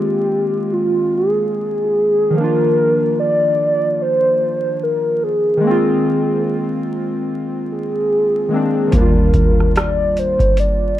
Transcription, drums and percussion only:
0, 0, Header, 1, 2, 480
1, 0, Start_track
1, 0, Key_signature, -3, "major"
1, 0, Tempo, 821918
1, 1375, Time_signature, 4, 2, 24, 8
1, 6422, End_track
2, 0, Start_track
2, 0, Title_t, "Drums"
2, 5211, Note_on_c, 9, 42, 87
2, 5215, Note_on_c, 9, 36, 99
2, 5270, Note_off_c, 9, 42, 0
2, 5274, Note_off_c, 9, 36, 0
2, 5452, Note_on_c, 9, 42, 54
2, 5454, Note_on_c, 9, 36, 91
2, 5511, Note_off_c, 9, 42, 0
2, 5512, Note_off_c, 9, 36, 0
2, 5608, Note_on_c, 9, 37, 30
2, 5667, Note_off_c, 9, 37, 0
2, 5698, Note_on_c, 9, 42, 84
2, 5708, Note_on_c, 9, 37, 119
2, 5756, Note_off_c, 9, 42, 0
2, 5767, Note_off_c, 9, 37, 0
2, 5938, Note_on_c, 9, 42, 58
2, 5996, Note_off_c, 9, 42, 0
2, 6070, Note_on_c, 9, 36, 85
2, 6075, Note_on_c, 9, 42, 33
2, 6128, Note_off_c, 9, 36, 0
2, 6133, Note_off_c, 9, 42, 0
2, 6173, Note_on_c, 9, 42, 78
2, 6232, Note_off_c, 9, 42, 0
2, 6422, End_track
0, 0, End_of_file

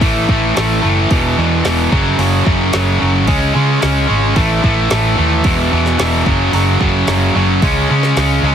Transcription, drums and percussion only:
0, 0, Header, 1, 2, 480
1, 0, Start_track
1, 0, Tempo, 543971
1, 15, Time_signature, 4, 2, 24, 8
1, 7544, End_track
2, 0, Start_track
2, 0, Title_t, "Drums"
2, 12, Note_on_c, 9, 36, 107
2, 17, Note_on_c, 9, 46, 58
2, 100, Note_off_c, 9, 36, 0
2, 105, Note_off_c, 9, 46, 0
2, 254, Note_on_c, 9, 36, 84
2, 342, Note_off_c, 9, 36, 0
2, 500, Note_on_c, 9, 46, 56
2, 504, Note_on_c, 9, 38, 110
2, 588, Note_off_c, 9, 46, 0
2, 593, Note_off_c, 9, 38, 0
2, 976, Note_on_c, 9, 46, 65
2, 980, Note_on_c, 9, 36, 121
2, 1065, Note_off_c, 9, 46, 0
2, 1068, Note_off_c, 9, 36, 0
2, 1454, Note_on_c, 9, 46, 56
2, 1459, Note_on_c, 9, 38, 114
2, 1543, Note_off_c, 9, 46, 0
2, 1547, Note_off_c, 9, 38, 0
2, 1698, Note_on_c, 9, 36, 93
2, 1786, Note_off_c, 9, 36, 0
2, 1932, Note_on_c, 9, 46, 53
2, 2020, Note_off_c, 9, 46, 0
2, 2176, Note_on_c, 9, 36, 77
2, 2264, Note_off_c, 9, 36, 0
2, 2409, Note_on_c, 9, 46, 54
2, 2414, Note_on_c, 9, 38, 110
2, 2497, Note_off_c, 9, 46, 0
2, 2502, Note_off_c, 9, 38, 0
2, 2890, Note_on_c, 9, 46, 55
2, 2895, Note_on_c, 9, 36, 107
2, 2978, Note_off_c, 9, 46, 0
2, 2983, Note_off_c, 9, 36, 0
2, 3373, Note_on_c, 9, 46, 54
2, 3377, Note_on_c, 9, 38, 104
2, 3461, Note_off_c, 9, 46, 0
2, 3466, Note_off_c, 9, 38, 0
2, 3848, Note_on_c, 9, 46, 55
2, 3851, Note_on_c, 9, 36, 101
2, 3936, Note_off_c, 9, 46, 0
2, 3939, Note_off_c, 9, 36, 0
2, 4093, Note_on_c, 9, 36, 81
2, 4181, Note_off_c, 9, 36, 0
2, 4328, Note_on_c, 9, 46, 56
2, 4332, Note_on_c, 9, 38, 111
2, 4416, Note_off_c, 9, 46, 0
2, 4420, Note_off_c, 9, 38, 0
2, 4801, Note_on_c, 9, 46, 58
2, 4807, Note_on_c, 9, 36, 116
2, 4889, Note_off_c, 9, 46, 0
2, 4895, Note_off_c, 9, 36, 0
2, 5171, Note_on_c, 9, 38, 30
2, 5259, Note_off_c, 9, 38, 0
2, 5287, Note_on_c, 9, 46, 53
2, 5291, Note_on_c, 9, 38, 108
2, 5375, Note_off_c, 9, 46, 0
2, 5379, Note_off_c, 9, 38, 0
2, 5527, Note_on_c, 9, 36, 97
2, 5615, Note_off_c, 9, 36, 0
2, 5766, Note_on_c, 9, 46, 55
2, 5854, Note_off_c, 9, 46, 0
2, 6007, Note_on_c, 9, 36, 77
2, 6095, Note_off_c, 9, 36, 0
2, 6243, Note_on_c, 9, 46, 53
2, 6247, Note_on_c, 9, 38, 97
2, 6331, Note_off_c, 9, 46, 0
2, 6335, Note_off_c, 9, 38, 0
2, 6727, Note_on_c, 9, 36, 112
2, 6727, Note_on_c, 9, 46, 56
2, 6815, Note_off_c, 9, 36, 0
2, 6815, Note_off_c, 9, 46, 0
2, 7088, Note_on_c, 9, 38, 34
2, 7177, Note_off_c, 9, 38, 0
2, 7206, Note_on_c, 9, 46, 53
2, 7211, Note_on_c, 9, 38, 102
2, 7295, Note_off_c, 9, 46, 0
2, 7299, Note_off_c, 9, 38, 0
2, 7544, End_track
0, 0, End_of_file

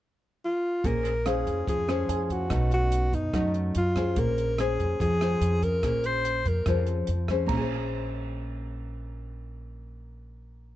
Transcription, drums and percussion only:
0, 0, Header, 1, 2, 480
1, 0, Start_track
1, 0, Key_signature, -5, "minor"
1, 0, Tempo, 415512
1, 970, Time_signature, 4, 2, 24, 8
1, 12429, End_track
2, 0, Start_track
2, 0, Title_t, "Drums"
2, 973, Note_on_c, 9, 36, 58
2, 974, Note_on_c, 9, 42, 43
2, 1089, Note_off_c, 9, 36, 0
2, 1090, Note_off_c, 9, 42, 0
2, 1213, Note_on_c, 9, 42, 25
2, 1329, Note_off_c, 9, 42, 0
2, 1453, Note_on_c, 9, 37, 57
2, 1453, Note_on_c, 9, 42, 43
2, 1568, Note_off_c, 9, 37, 0
2, 1568, Note_off_c, 9, 42, 0
2, 1695, Note_on_c, 9, 36, 22
2, 1698, Note_on_c, 9, 42, 26
2, 1811, Note_off_c, 9, 36, 0
2, 1814, Note_off_c, 9, 42, 0
2, 1935, Note_on_c, 9, 36, 56
2, 1942, Note_on_c, 9, 42, 45
2, 2051, Note_off_c, 9, 36, 0
2, 2058, Note_off_c, 9, 42, 0
2, 2180, Note_on_c, 9, 37, 55
2, 2180, Note_on_c, 9, 42, 27
2, 2296, Note_off_c, 9, 37, 0
2, 2296, Note_off_c, 9, 42, 0
2, 2417, Note_on_c, 9, 42, 44
2, 2533, Note_off_c, 9, 42, 0
2, 2653, Note_on_c, 9, 36, 21
2, 2660, Note_on_c, 9, 42, 27
2, 2769, Note_off_c, 9, 36, 0
2, 2775, Note_off_c, 9, 42, 0
2, 2890, Note_on_c, 9, 37, 55
2, 2890, Note_on_c, 9, 42, 46
2, 2891, Note_on_c, 9, 36, 55
2, 3006, Note_off_c, 9, 37, 0
2, 3006, Note_off_c, 9, 42, 0
2, 3007, Note_off_c, 9, 36, 0
2, 3136, Note_on_c, 9, 42, 27
2, 3251, Note_off_c, 9, 42, 0
2, 3371, Note_on_c, 9, 42, 42
2, 3487, Note_off_c, 9, 42, 0
2, 3613, Note_on_c, 9, 36, 23
2, 3619, Note_on_c, 9, 42, 25
2, 3729, Note_off_c, 9, 36, 0
2, 3734, Note_off_c, 9, 42, 0
2, 3853, Note_on_c, 9, 36, 57
2, 3855, Note_on_c, 9, 37, 58
2, 3855, Note_on_c, 9, 42, 39
2, 3968, Note_off_c, 9, 36, 0
2, 3971, Note_off_c, 9, 37, 0
2, 3971, Note_off_c, 9, 42, 0
2, 4091, Note_on_c, 9, 42, 24
2, 4207, Note_off_c, 9, 42, 0
2, 4328, Note_on_c, 9, 42, 40
2, 4444, Note_off_c, 9, 42, 0
2, 4572, Note_on_c, 9, 37, 56
2, 4572, Note_on_c, 9, 42, 24
2, 4573, Note_on_c, 9, 36, 23
2, 4687, Note_off_c, 9, 37, 0
2, 4687, Note_off_c, 9, 42, 0
2, 4688, Note_off_c, 9, 36, 0
2, 4809, Note_on_c, 9, 42, 43
2, 4814, Note_on_c, 9, 36, 60
2, 4925, Note_off_c, 9, 42, 0
2, 4930, Note_off_c, 9, 36, 0
2, 5059, Note_on_c, 9, 42, 25
2, 5175, Note_off_c, 9, 42, 0
2, 5296, Note_on_c, 9, 37, 59
2, 5296, Note_on_c, 9, 42, 42
2, 5411, Note_off_c, 9, 37, 0
2, 5411, Note_off_c, 9, 42, 0
2, 5537, Note_on_c, 9, 36, 22
2, 5543, Note_on_c, 9, 42, 25
2, 5653, Note_off_c, 9, 36, 0
2, 5658, Note_off_c, 9, 42, 0
2, 5778, Note_on_c, 9, 36, 58
2, 5783, Note_on_c, 9, 42, 45
2, 5893, Note_off_c, 9, 36, 0
2, 5899, Note_off_c, 9, 42, 0
2, 6020, Note_on_c, 9, 37, 59
2, 6020, Note_on_c, 9, 42, 28
2, 6136, Note_off_c, 9, 37, 0
2, 6136, Note_off_c, 9, 42, 0
2, 6257, Note_on_c, 9, 42, 50
2, 6372, Note_off_c, 9, 42, 0
2, 6497, Note_on_c, 9, 36, 24
2, 6501, Note_on_c, 9, 42, 26
2, 6612, Note_off_c, 9, 36, 0
2, 6616, Note_off_c, 9, 42, 0
2, 6735, Note_on_c, 9, 36, 54
2, 6736, Note_on_c, 9, 37, 54
2, 6736, Note_on_c, 9, 42, 45
2, 6851, Note_off_c, 9, 36, 0
2, 6851, Note_off_c, 9, 37, 0
2, 6851, Note_off_c, 9, 42, 0
2, 6977, Note_on_c, 9, 42, 27
2, 7092, Note_off_c, 9, 42, 0
2, 7219, Note_on_c, 9, 42, 44
2, 7335, Note_off_c, 9, 42, 0
2, 7455, Note_on_c, 9, 36, 22
2, 7458, Note_on_c, 9, 42, 25
2, 7571, Note_off_c, 9, 36, 0
2, 7574, Note_off_c, 9, 42, 0
2, 7692, Note_on_c, 9, 37, 63
2, 7692, Note_on_c, 9, 42, 43
2, 7695, Note_on_c, 9, 36, 57
2, 7808, Note_off_c, 9, 37, 0
2, 7808, Note_off_c, 9, 42, 0
2, 7810, Note_off_c, 9, 36, 0
2, 7931, Note_on_c, 9, 42, 26
2, 8046, Note_off_c, 9, 42, 0
2, 8169, Note_on_c, 9, 42, 39
2, 8284, Note_off_c, 9, 42, 0
2, 8414, Note_on_c, 9, 36, 23
2, 8414, Note_on_c, 9, 37, 58
2, 8414, Note_on_c, 9, 42, 24
2, 8529, Note_off_c, 9, 37, 0
2, 8529, Note_off_c, 9, 42, 0
2, 8530, Note_off_c, 9, 36, 0
2, 8650, Note_on_c, 9, 49, 62
2, 8655, Note_on_c, 9, 36, 73
2, 8765, Note_off_c, 9, 49, 0
2, 8770, Note_off_c, 9, 36, 0
2, 12429, End_track
0, 0, End_of_file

